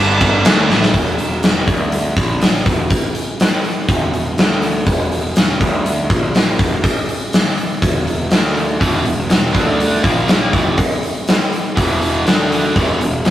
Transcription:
Already playing: G1 G2 D3
0.00 G3
0.20 kick, crash
0.45 D2 D3 A3 D4, snare, crash
0.70 A1 A2 E3 A3, snare
0.83 snare
0.93 E1, kick, open hi-hat
1.18 E1, open hi-hat
1.43 E1, snare, open hi-hat
1.68 D2, kick, open hi-hat
1.92 open hi-hat
2.17 A#1, kick, open hi-hat
2.41 snare, open hi-hat
2.66 E1, kick, open hi-hat
2.90 kick, open hi-hat
3.15 open hi-hat
3.40 snare, open hi-hat
3.64 open hi-hat
3.89 E1, kick, open hi-hat
4.14 open hi-hat
4.38 D2, snare, open hi-hat
4.51 snare
4.62 open hi-hat
4.87 E1, kick, open hi-hat
5.12 E1, open hi-hat
5.36 E1, snare, open hi-hat
5.61 D2, kick, open hi-hat
5.86 open hi-hat
6.10 A#1, kick, open hi-hat
6.35 snare, open hi-hat
6.59 E1, kick, open hi-hat
6.84 kick, open hi-hat
7.09 open hi-hat
7.33 snare, open hi-hat
7.58 open hi-hat
7.82 E1, kick, open hi-hat
8.07 open hi-hat
8.31 D2, snare, open hi-hat
8.45 snare
8.57 open hi-hat
8.80 E1 E2 B2 E3, kick, open hi-hat
9.05 E1 E2 B2, open hi-hat
9.29 E1 E2 B2, snare, open hi-hat
9.53 D2 D3 A3 D4, kick, open hi-hat
9.80 open hi-hat
10.03 A#1 A#2 F3 A#3, kick, open hi-hat
10.28 snare, open hi-hat
10.53 E1 E2 B2 E3, kick, open hi-hat
10.78 kick, open hi-hat
11.03 open hi-hat
11.28 snare, open hi-hat
11.52 open hi-hat
11.76 E1 E2 B2 E3, kick, open hi-hat
12.02 open hi-hat
12.26 D2 D3 A3 D4, snare, open hi-hat
12.52 open hi-hat
12.76 E1 E2 B2 E3, kick, open hi-hat
13.00 E1 E2 B2, open hi-hat
13.25 E1 E2 B2, snare, open hi-hat

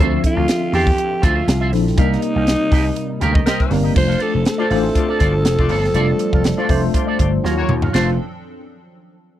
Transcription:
Already playing: F4
0.00 D2 D3 C4 D4 A4 C5 E5
0.05 F3
0.23 F4, muted clean electric guitar stroke, kick, closed hi-hat
0.36 D2 F4 C5 F5
0.48 snare, closed hi-hat
0.61 muted clean electric guitar stroke
0.72 E2 F4 G4 C5 E5, open hi-hat
0.86 muted clean electric guitar stroke, kick
0.98 muted clean electric guitar stroke, closed hi-hat
1.11 muted clean electric guitar stroke
1.21 D2 F4 C5 E5, kick, closed hi-hat
1.35 F4 C5 E5
1.47 C2, muted clean electric guitar stroke, snare, closed hi-hat
1.60 F4 C5 E5
1.72 A#1 F3 C4 D4 E4 A4, muted clean electric guitar stroke, snare, open hi-hat
1.85 muted clean electric guitar stroke, snare
1.97 C2 C3 G3 A#3 C4 D4 D#4 G4 A#4 F5, kick, closed hi-hat
2.04 D#4
2.13 snare
2.22 muted clean electric guitar stroke, closed hi-hat
2.36 C2 G4 A#4 F5
2.47 snare, closed hi-hat
2.61 muted clean electric guitar stroke
2.71 C2 G4 A#4 D#5, kick, open hi-hat
2.85 muted clean electric guitar stroke
2.96 muted clean electric guitar stroke, closed hi-hat
3.10 muted clean electric guitar stroke
3.20 D2 C4 G4 A#4 D#5 F5, closed hi-hat
3.34 G4 A#4 D#5, kick
3.46 C4 G4 A#4 D#5, snare, closed hi-hat
3.59 muted clean electric guitar stroke, kick
3.70 G1 G3 A#3 C4 D#4 A#4, muted clean electric guitar stroke, snare, open hi-hat
3.83 G4 A#4 D#5
3.95 F1 F3 A3 C4 D4 F4 A4 C5, muted clean electric guitar stroke, kick, crash
4.08 F4 A4 F5, snare
4.19 F4 A4 D5, closed hi-hat
4.34 F1, muted clean electric guitar stroke
4.45 A4, muted clean electric guitar stroke, snare, closed hi-hat
4.58 A3 D4 F4 A4 C5 D5
4.70 A1 A3 D4 F4 A4 C5 D5, open hi-hat
4.84 muted clean electric guitar stroke
4.95 A3 F4 D5, muted clean electric guitar stroke, kick, closed hi-hat
5.09 F4 A4 D5
5.19 G1 A3 F4 A4 D5, kick, closed hi-hat
5.33 muted clean electric guitar stroke
5.44 F1, muted clean electric guitar stroke, snare, closed hi-hat
5.58 A3 F4 D5, muted clean electric guitar stroke, kick
5.69 G1 F4 A4 D5, open hi-hat
5.84 muted clean electric guitar stroke, snare
5.94 F1 G3 D4 F4 A4 D5, closed hi-hat
6.00 A3
6.08 muted clean electric guitar stroke
6.19 muted clean electric guitar stroke, closed hi-hat
6.33 F1 F4 A4 F5, kick
6.44 muted clean electric guitar stroke, snare, closed hi-hat
6.57 A3 D4 F4 A4 C5 D5
6.69 F1 A3 D4 F4 A4 C5 D5, kick, open hi-hat
6.82 muted clean electric guitar stroke
6.94 A3 F4 D5, muted clean electric guitar stroke, kick, closed hi-hat
7.07 F4 A4 D5
7.19 G1 A3 F4 D5, muted clean electric guitar stroke, kick, closed hi-hat
7.32 muted clean electric guitar stroke
7.43 D#2 D#3 F#3 C#4 D#4 F4 F#4 C#5 F5, snare
7.57 A#3 F#4 C#5, muted clean electric guitar stroke
7.68 D#2, muted clean electric guitar stroke, mid tom
7.82 F#4 C#5 F5, floor tom
7.93 F1 F3 A3 C4 D4 F4 A4 C5, snare, china

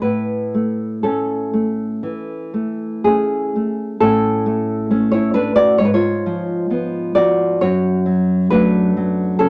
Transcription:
0.02 A2 B4
0.54 A3
1.03 A3 C#4 A4
1.54 A3
2.03 E3
2.54 A3
3.04 A3 C#4 G#4
3.56 A3
4.00 A2 C#4 A4
4.46 A3
4.90 A3 C#4
5.11 E4 C#5
5.34 A3 D4 B4
5.56 F#4 D5
5.78 G#2 C#5
5.85 B4
5.94 F4 C#5
6.26 F3
6.70 F3 B3
7.15 F3 F#4 D5
7.61 F#2 F#4 C#5
8.06 F#3
8.51 F#3 A3 D4 B4
8.97 F#3
9.39 C#3 C#4 A4

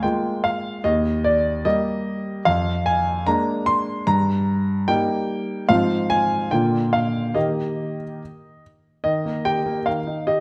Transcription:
0.03 G#3 A#3 F4 G5
0.44 F5
0.84 D#2 D#5
1.24 D5
1.65 G3 A#3 G4 D#5
2.45 F2 F5
2.86 G#5
3.27 G#3 A#3 D4 A#5
3.66 C6
4.07 G2 A#5
4.88 G3 A#3 D#4 G5
5.69 G#2 F3 C4 F4 F5
6.10 G#5
6.51 A#2 D3 A#3 F4 G5
6.93 F5
7.35 D#3 A#3 G4 D#5
9.04 D#3 D#5
9.25 A#3
9.45 G4 G5
9.66 A#3
9.86 D#3 F5
10.07 D#4
10.27 G4 D#5

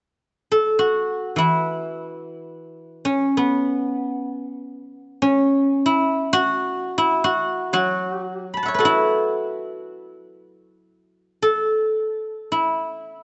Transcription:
0.52 A4
0.79 F#4
1.36 E3 E4
3.05 C#4
3.37 B3
5.22 C#4
5.86 E4
6.33 F#4
6.98 E4
7.24 F#4
7.73 F#3 F#4
8.54 A5 B5
8.63 E5 F#5
8.68 C#5
8.74 B4
8.79 F#4 A4
8.85 E4
11.42 A4
12.52 E4

